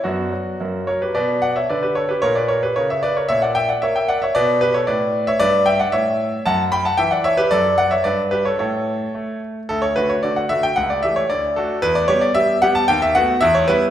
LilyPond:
<<
  \new Staff \with { instrumentName = "Grand piano" } { \time 2/4 \key b \minor \tempo 4 = 113 << { fis'4. <ais' cis''>16 <g' b'>16 | <b' d''>8 <d'' fis''>16 <cis'' e''>16 <b' d''>16 <g' b'>16 <a' cis''>16 <g' b'>16 | <ais' cis''>16 <b' d''>16 <ais' cis''>16 <g' b'>16 <ais' cis''>16 <cis'' e''>16 <b' d''>16 <ais' cis''>16 | <cis'' e''>16 <d'' fis''>16 <e'' g''>16 <d'' fis''>16 <cis'' e''>16 <e'' g''>16 <d'' fis''>16 <cis'' e''>16 |
<b' d''>8 <g' b'>16 <a' cis''>16 <b' d''>8. <cis'' e''>16 | \key d \major <b' d''>8 <e'' g''>16 <d'' fis''>16 <cis'' e''>4 | <fis'' a''>8 <g'' b''>16 <fis'' a''>16 <e'' g''>16 <d'' fis''>16 <cis'' e''>16 <g' b'>16 | <a' d''>8 <d'' fis''>16 <cis'' e''>16 <b' d''>8 <g' b'>16 <a' cis''>16 |
<a' cis''>4. r8 | a'16 cis''16 b'16 cis''16 d''16 fis''16 e''16 g''16 | fis''16 d''16 e''16 cis''16 d''8 a'8 | b'16 d''16 cis''16 d''16 e''8 fis''16 a''16 |
g''16 e''16 fis''8 e''16 cis''16 b'8 | } \\ { <b d'>4 <ais cis'>4 | r2 | r2 | r2 |
r2 | r2 | r2 | r2 |
r2 | r2 | r2 | r2 |
r2 | } >> }
  \new Staff \with { instrumentName = "Grand piano" } { \clef bass \time 2/4 \key b \minor fis,8 fis8 fis,8 fis8 | b,4 d4 | ais,4 cis4 | ais,4 ais4 |
b,4 a,4 | \key d \major g,4 a,4 | fis,4 e4 | fis,4 g,4 |
a,4 a4 | d,8 <d a fis'>8 <d a fis'>8 <d a fis'>8 | cis,8 <e a g'>8 d,8 <a d' fis'>8 | e,8 <g b g'>8 <g b g'>8 <g b g'>8 |
dis,8 <a b fis'>8 e,8 <g b e'>8 | }
>>